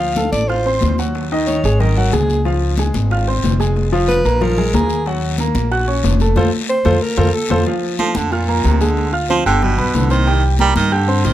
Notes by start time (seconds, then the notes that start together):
Already playing: D2 F3 F4 F5
0.00 high bongo, high conga
0.16 A3 A4 A5, high bongo, high conga, short guiro
0.32 A1 D5, high conga, short guiro
0.48 F4 C5 F5 F6, high bongo, high conga, long guiro
0.65 C4 C5 C6, high bongo, high conga
0.81 D#2, high bongo, low bongo, high conga, short guiro
0.98 F#3 F#4 F#5, high bongo, high conga, short guiro
1.15 high bongo, high conga, long guiro
1.31 D#3 D#4 D#5, high bongo, high conga
1.47 C#5, high bongo, high conga, short guiro
1.64 G#1 G#3 G#4 G#5, high bongo, high conga, short guiro
1.80 D#3 D#4 A#4 D#5, high bongo, high conga, low conga, long guiro
1.97 F#3 F#4 F#5, high conga, low conga
2.12 C#2 G#3 G#4 G#5, high bongo, low bongo, high conga, short guiro
2.30 high conga, short guiro
2.45 F3 F4 F5, high bongo, high conga, long guiro
2.61 high bongo, high conga
2.78 G#3 G#4 G#5, high bongo, high conga, short guiro
2.94 G#1, high conga, short guiro
3.11 F4 F5 F6, high bongo, high conga, long guiro
3.27 C4 C5 C6, high bongo, high conga
3.43 F1, high bongo, low bongo, high conga, short guiro
3.59 G#3 G#4 G#5, high bongo, high conga, short guiro
3.76 high bongo, high conga, long guiro
3.92 F3 F4 F5, high bongo
4.08 B4, high bongo, high conga, short guiro
4.25 A#1 A#3 A#4 A#5, high conga, short guiro
4.41 F3 F4 A#4 F5, high bongo, high conga, low conga, long guiro
4.57 G#3 G#4 G#5, high bongo, high conga, low conga
4.74 D#2 A#3 G#4 A#4 A#5, high bongo, low bongo, high conga, short guiro
4.89 short guiro
5.06 F#3 F#4 F#5, high bongo, high conga, long guiro
5.24 high bongo
5.38 A#3 A#4 A#5, high bongo, high conga, short guiro
5.55 A#1, high conga, short guiro
5.71 F#4 F#5 F#6, high bongo, high conga, long guiro
5.87 C#4 C#5 C#6, high bongo, high conga
6.04 F1, high bongo, low bongo, high conga, short guiro
6.20 A3 A4 A5, high bongo, high conga, short guiro
6.36 F2 F4 A4 C5, low bongo, high conga, long guiro
6.69 C5
6.85 F2 F4 A4 C5, low bongo, high conga, long guiro
7.02 A#4
7.17 F2 F4 A4 C5, low bongo, high conga, long guiro
7.35 A4
7.50 F2 F4 A4 C5, low bongo, high conga, long guiro
7.66 F3 F4 F5, high bongo, high conga, long guiro
7.83 high bongo, high conga
7.99 F3 A3 A4 A5, high bongo, high conga, short guiro
8.15 F2 D3, high conga, short guiro
8.31 A#2 F4 F5 F6, high bongo, high conga, long guiro
8.48 A#3 A#4 A#5, high bongo, high conga
8.64 D2 C3, high bongo, low bongo, high conga, short guiro
8.81 D3 G#3 G#4 G#5, high bongo, high conga, short guiro
8.97 high bongo, high conga, long guiro
9.12 F4 F5 F6, high bongo, high conga
9.29 F3 C4 C5 C6, high bongo, high conga, short guiro
9.45 G1 D3 G3 G4 G5, high conga, short guiro
9.62 B2, high bongo, high conga, low conga, long guiro
9.78 B1 B3 B4 B5, high conga, low conga
9.94 C2 D3, high bongo, low bongo, high conga, short guiro
10.10 D#3 C4 C5 C6, high conga, short guiro
10.26 G3 G4 G5, high bongo, high conga, long guiro
10.43 high bongo, high conga
10.59 G3 A#3 A#4 A#5, high bongo, high conga, short guiro
10.76 G2 D#3, high conga, short guiro
10.91 D3 G4 G5 G6, high bongo, high conga, long guiro
11.08 C4 C5 C6, high bongo, high conga
11.24 A#1 D#3, high bongo, low bongo, high conga, short guiro